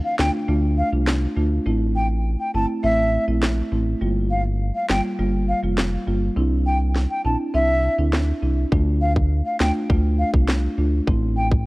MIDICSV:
0, 0, Header, 1, 5, 480
1, 0, Start_track
1, 0, Key_signature, -1, "minor"
1, 0, Tempo, 588235
1, 1356, Time_signature, 4, 2, 24, 8
1, 9515, End_track
2, 0, Start_track
2, 0, Title_t, "Flute"
2, 0, Program_c, 0, 73
2, 35, Note_on_c, 0, 77, 74
2, 128, Note_off_c, 0, 77, 0
2, 155, Note_on_c, 0, 79, 80
2, 249, Note_off_c, 0, 79, 0
2, 635, Note_on_c, 0, 77, 78
2, 729, Note_off_c, 0, 77, 0
2, 1596, Note_on_c, 0, 79, 76
2, 1689, Note_off_c, 0, 79, 0
2, 1955, Note_on_c, 0, 79, 71
2, 2049, Note_off_c, 0, 79, 0
2, 2076, Note_on_c, 0, 81, 85
2, 2169, Note_off_c, 0, 81, 0
2, 2314, Note_on_c, 0, 76, 106
2, 2653, Note_off_c, 0, 76, 0
2, 3516, Note_on_c, 0, 77, 88
2, 3609, Note_off_c, 0, 77, 0
2, 3876, Note_on_c, 0, 77, 74
2, 3969, Note_off_c, 0, 77, 0
2, 3997, Note_on_c, 0, 79, 83
2, 4090, Note_off_c, 0, 79, 0
2, 4476, Note_on_c, 0, 77, 77
2, 4569, Note_off_c, 0, 77, 0
2, 5436, Note_on_c, 0, 79, 78
2, 5529, Note_off_c, 0, 79, 0
2, 5796, Note_on_c, 0, 79, 75
2, 5889, Note_off_c, 0, 79, 0
2, 5916, Note_on_c, 0, 81, 82
2, 6009, Note_off_c, 0, 81, 0
2, 6155, Note_on_c, 0, 76, 99
2, 6494, Note_off_c, 0, 76, 0
2, 7355, Note_on_c, 0, 77, 86
2, 7449, Note_off_c, 0, 77, 0
2, 7714, Note_on_c, 0, 77, 71
2, 7808, Note_off_c, 0, 77, 0
2, 7835, Note_on_c, 0, 79, 80
2, 7929, Note_off_c, 0, 79, 0
2, 8316, Note_on_c, 0, 77, 78
2, 8409, Note_off_c, 0, 77, 0
2, 9275, Note_on_c, 0, 79, 76
2, 9369, Note_off_c, 0, 79, 0
2, 9515, End_track
3, 0, Start_track
3, 0, Title_t, "Marimba"
3, 0, Program_c, 1, 12
3, 0, Note_on_c, 1, 57, 89
3, 0, Note_on_c, 1, 62, 79
3, 0, Note_on_c, 1, 65, 93
3, 97, Note_off_c, 1, 57, 0
3, 98, Note_off_c, 1, 62, 0
3, 100, Note_off_c, 1, 65, 0
3, 154, Note_on_c, 1, 57, 73
3, 156, Note_on_c, 1, 62, 66
3, 159, Note_on_c, 1, 65, 80
3, 376, Note_off_c, 1, 57, 0
3, 377, Note_off_c, 1, 62, 0
3, 378, Note_off_c, 1, 65, 0
3, 393, Note_on_c, 1, 57, 89
3, 396, Note_on_c, 1, 62, 83
3, 398, Note_on_c, 1, 65, 97
3, 726, Note_off_c, 1, 57, 0
3, 727, Note_off_c, 1, 62, 0
3, 728, Note_off_c, 1, 65, 0
3, 754, Note_on_c, 1, 57, 73
3, 756, Note_on_c, 1, 62, 70
3, 759, Note_on_c, 1, 65, 82
3, 879, Note_off_c, 1, 57, 0
3, 880, Note_off_c, 1, 62, 0
3, 881, Note_off_c, 1, 65, 0
3, 1113, Note_on_c, 1, 57, 72
3, 1116, Note_on_c, 1, 62, 67
3, 1118, Note_on_c, 1, 65, 85
3, 1239, Note_off_c, 1, 57, 0
3, 1240, Note_off_c, 1, 62, 0
3, 1241, Note_off_c, 1, 65, 0
3, 1353, Note_on_c, 1, 57, 89
3, 1356, Note_on_c, 1, 60, 82
3, 1358, Note_on_c, 1, 64, 100
3, 2017, Note_off_c, 1, 57, 0
3, 2019, Note_off_c, 1, 60, 0
3, 2020, Note_off_c, 1, 64, 0
3, 2074, Note_on_c, 1, 57, 74
3, 2076, Note_on_c, 1, 60, 70
3, 2078, Note_on_c, 1, 64, 82
3, 2296, Note_off_c, 1, 57, 0
3, 2297, Note_off_c, 1, 60, 0
3, 2298, Note_off_c, 1, 64, 0
3, 2312, Note_on_c, 1, 57, 92
3, 2315, Note_on_c, 1, 60, 82
3, 2317, Note_on_c, 1, 64, 96
3, 2645, Note_off_c, 1, 57, 0
3, 2647, Note_off_c, 1, 60, 0
3, 2648, Note_off_c, 1, 64, 0
3, 2673, Note_on_c, 1, 57, 75
3, 2676, Note_on_c, 1, 60, 69
3, 2678, Note_on_c, 1, 64, 84
3, 2799, Note_off_c, 1, 57, 0
3, 2800, Note_off_c, 1, 60, 0
3, 2801, Note_off_c, 1, 64, 0
3, 3033, Note_on_c, 1, 57, 71
3, 3035, Note_on_c, 1, 60, 68
3, 3038, Note_on_c, 1, 64, 81
3, 3159, Note_off_c, 1, 57, 0
3, 3160, Note_off_c, 1, 60, 0
3, 3161, Note_off_c, 1, 64, 0
3, 3274, Note_on_c, 1, 55, 90
3, 3276, Note_on_c, 1, 58, 82
3, 3279, Note_on_c, 1, 65, 99
3, 3938, Note_off_c, 1, 55, 0
3, 3939, Note_off_c, 1, 58, 0
3, 3940, Note_off_c, 1, 65, 0
3, 3994, Note_on_c, 1, 55, 74
3, 3996, Note_on_c, 1, 58, 66
3, 3999, Note_on_c, 1, 65, 80
3, 4216, Note_off_c, 1, 55, 0
3, 4217, Note_off_c, 1, 58, 0
3, 4219, Note_off_c, 1, 65, 0
3, 4233, Note_on_c, 1, 55, 95
3, 4236, Note_on_c, 1, 58, 82
3, 4238, Note_on_c, 1, 65, 99
3, 4566, Note_off_c, 1, 55, 0
3, 4567, Note_off_c, 1, 58, 0
3, 4568, Note_off_c, 1, 65, 0
3, 4593, Note_on_c, 1, 55, 73
3, 4596, Note_on_c, 1, 58, 66
3, 4599, Note_on_c, 1, 65, 84
3, 4719, Note_off_c, 1, 55, 0
3, 4720, Note_off_c, 1, 58, 0
3, 4721, Note_off_c, 1, 65, 0
3, 4954, Note_on_c, 1, 55, 73
3, 4956, Note_on_c, 1, 58, 70
3, 4958, Note_on_c, 1, 65, 82
3, 5079, Note_off_c, 1, 55, 0
3, 5080, Note_off_c, 1, 58, 0
3, 5081, Note_off_c, 1, 65, 0
3, 5193, Note_on_c, 1, 60, 90
3, 5195, Note_on_c, 1, 62, 82
3, 5198, Note_on_c, 1, 64, 94
3, 5857, Note_off_c, 1, 60, 0
3, 5858, Note_off_c, 1, 62, 0
3, 5860, Note_off_c, 1, 64, 0
3, 5912, Note_on_c, 1, 60, 73
3, 5915, Note_on_c, 1, 62, 67
3, 5917, Note_on_c, 1, 64, 83
3, 6135, Note_off_c, 1, 60, 0
3, 6136, Note_off_c, 1, 62, 0
3, 6138, Note_off_c, 1, 64, 0
3, 6153, Note_on_c, 1, 60, 88
3, 6155, Note_on_c, 1, 62, 80
3, 6158, Note_on_c, 1, 64, 98
3, 6486, Note_off_c, 1, 60, 0
3, 6487, Note_off_c, 1, 62, 0
3, 6488, Note_off_c, 1, 64, 0
3, 6514, Note_on_c, 1, 60, 72
3, 6516, Note_on_c, 1, 62, 68
3, 6518, Note_on_c, 1, 64, 83
3, 6639, Note_off_c, 1, 60, 0
3, 6640, Note_off_c, 1, 62, 0
3, 6641, Note_off_c, 1, 64, 0
3, 6874, Note_on_c, 1, 60, 73
3, 6877, Note_on_c, 1, 62, 66
3, 6879, Note_on_c, 1, 64, 80
3, 6999, Note_off_c, 1, 60, 0
3, 7000, Note_off_c, 1, 62, 0
3, 7002, Note_off_c, 1, 64, 0
3, 7115, Note_on_c, 1, 57, 90
3, 7117, Note_on_c, 1, 62, 81
3, 7120, Note_on_c, 1, 65, 100
3, 7778, Note_off_c, 1, 57, 0
3, 7779, Note_off_c, 1, 62, 0
3, 7781, Note_off_c, 1, 65, 0
3, 7835, Note_on_c, 1, 57, 76
3, 7837, Note_on_c, 1, 62, 67
3, 7840, Note_on_c, 1, 65, 80
3, 8056, Note_off_c, 1, 57, 0
3, 8057, Note_off_c, 1, 62, 0
3, 8059, Note_off_c, 1, 65, 0
3, 8074, Note_on_c, 1, 57, 90
3, 8076, Note_on_c, 1, 62, 85
3, 8079, Note_on_c, 1, 65, 100
3, 8406, Note_off_c, 1, 57, 0
3, 8408, Note_off_c, 1, 62, 0
3, 8409, Note_off_c, 1, 65, 0
3, 8435, Note_on_c, 1, 57, 72
3, 8437, Note_on_c, 1, 62, 70
3, 8439, Note_on_c, 1, 65, 83
3, 8559, Note_off_c, 1, 57, 0
3, 8561, Note_off_c, 1, 62, 0
3, 8562, Note_off_c, 1, 65, 0
3, 8793, Note_on_c, 1, 57, 75
3, 8796, Note_on_c, 1, 62, 68
3, 8799, Note_on_c, 1, 65, 80
3, 8919, Note_off_c, 1, 57, 0
3, 8920, Note_off_c, 1, 62, 0
3, 8921, Note_off_c, 1, 65, 0
3, 9034, Note_on_c, 1, 57, 88
3, 9036, Note_on_c, 1, 60, 85
3, 9038, Note_on_c, 1, 64, 104
3, 9515, Note_off_c, 1, 57, 0
3, 9515, Note_off_c, 1, 60, 0
3, 9515, Note_off_c, 1, 64, 0
3, 9515, End_track
4, 0, Start_track
4, 0, Title_t, "Analog synth bass"
4, 0, Program_c, 2, 38
4, 157, Note_on_c, 2, 38, 81
4, 250, Note_off_c, 2, 38, 0
4, 395, Note_on_c, 2, 38, 97
4, 675, Note_off_c, 2, 38, 0
4, 755, Note_on_c, 2, 36, 88
4, 1036, Note_off_c, 2, 36, 0
4, 1116, Note_on_c, 2, 38, 86
4, 1303, Note_off_c, 2, 38, 0
4, 1356, Note_on_c, 2, 33, 106
4, 1926, Note_off_c, 2, 33, 0
4, 2075, Note_on_c, 2, 31, 86
4, 2169, Note_off_c, 2, 31, 0
4, 2315, Note_on_c, 2, 33, 99
4, 2596, Note_off_c, 2, 33, 0
4, 2676, Note_on_c, 2, 34, 88
4, 2956, Note_off_c, 2, 34, 0
4, 3036, Note_on_c, 2, 33, 94
4, 3222, Note_off_c, 2, 33, 0
4, 3276, Note_on_c, 2, 31, 111
4, 3846, Note_off_c, 2, 31, 0
4, 3996, Note_on_c, 2, 31, 89
4, 4089, Note_off_c, 2, 31, 0
4, 4236, Note_on_c, 2, 31, 98
4, 4516, Note_off_c, 2, 31, 0
4, 4595, Note_on_c, 2, 29, 89
4, 4875, Note_off_c, 2, 29, 0
4, 4955, Note_on_c, 2, 31, 90
4, 5142, Note_off_c, 2, 31, 0
4, 5195, Note_on_c, 2, 36, 113
4, 5766, Note_off_c, 2, 36, 0
4, 5916, Note_on_c, 2, 34, 85
4, 6009, Note_off_c, 2, 34, 0
4, 6156, Note_on_c, 2, 36, 92
4, 6436, Note_off_c, 2, 36, 0
4, 6515, Note_on_c, 2, 38, 90
4, 6795, Note_off_c, 2, 38, 0
4, 6876, Note_on_c, 2, 36, 90
4, 7063, Note_off_c, 2, 36, 0
4, 7116, Note_on_c, 2, 38, 117
4, 7686, Note_off_c, 2, 38, 0
4, 7836, Note_on_c, 2, 38, 90
4, 7930, Note_off_c, 2, 38, 0
4, 8077, Note_on_c, 2, 38, 98
4, 8356, Note_off_c, 2, 38, 0
4, 8435, Note_on_c, 2, 36, 85
4, 8715, Note_off_c, 2, 36, 0
4, 8796, Note_on_c, 2, 38, 90
4, 8983, Note_off_c, 2, 38, 0
4, 9036, Note_on_c, 2, 33, 107
4, 9515, Note_off_c, 2, 33, 0
4, 9515, End_track
5, 0, Start_track
5, 0, Title_t, "Drums"
5, 156, Note_on_c, 9, 38, 109
5, 156, Note_on_c, 9, 39, 90
5, 238, Note_off_c, 9, 38, 0
5, 238, Note_off_c, 9, 39, 0
5, 877, Note_on_c, 9, 38, 116
5, 877, Note_on_c, 9, 39, 96
5, 958, Note_off_c, 9, 38, 0
5, 958, Note_off_c, 9, 39, 0
5, 2797, Note_on_c, 9, 38, 121
5, 2797, Note_on_c, 9, 39, 96
5, 2879, Note_off_c, 9, 38, 0
5, 2879, Note_off_c, 9, 39, 0
5, 3996, Note_on_c, 9, 38, 108
5, 3996, Note_on_c, 9, 39, 86
5, 4078, Note_off_c, 9, 38, 0
5, 4078, Note_off_c, 9, 39, 0
5, 4717, Note_on_c, 9, 38, 118
5, 4717, Note_on_c, 9, 39, 98
5, 4799, Note_off_c, 9, 38, 0
5, 4799, Note_off_c, 9, 39, 0
5, 5677, Note_on_c, 9, 38, 62
5, 5758, Note_off_c, 9, 38, 0
5, 6637, Note_on_c, 9, 38, 118
5, 6637, Note_on_c, 9, 39, 93
5, 6719, Note_off_c, 9, 38, 0
5, 6719, Note_off_c, 9, 39, 0
5, 7116, Note_on_c, 9, 36, 101
5, 7198, Note_off_c, 9, 36, 0
5, 7476, Note_on_c, 9, 36, 88
5, 7557, Note_off_c, 9, 36, 0
5, 7836, Note_on_c, 9, 38, 109
5, 7836, Note_on_c, 9, 39, 83
5, 7918, Note_off_c, 9, 38, 0
5, 7918, Note_off_c, 9, 39, 0
5, 8077, Note_on_c, 9, 36, 105
5, 8158, Note_off_c, 9, 36, 0
5, 8435, Note_on_c, 9, 36, 90
5, 8516, Note_off_c, 9, 36, 0
5, 8557, Note_on_c, 9, 38, 121
5, 8557, Note_on_c, 9, 39, 95
5, 8638, Note_off_c, 9, 38, 0
5, 8639, Note_off_c, 9, 39, 0
5, 9036, Note_on_c, 9, 36, 109
5, 9118, Note_off_c, 9, 36, 0
5, 9396, Note_on_c, 9, 36, 86
5, 9477, Note_off_c, 9, 36, 0
5, 9515, End_track
0, 0, End_of_file